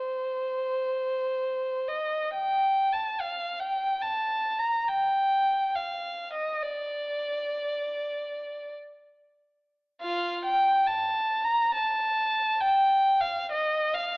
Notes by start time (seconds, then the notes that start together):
Already playing: C5
1.89 D#5
2.34 G5
2.93 A5
3.20 F5
3.60 G5
4.02 A5
4.59 A#5
4.89 G5
5.75 F5
6.33 D#5
6.63 D5
10.02 F4 F5
10.45 G5
10.87 A5
11.45 A#5
11.74 A5
12.61 G5
13.21 F5
13.52 D#5
13.94 F5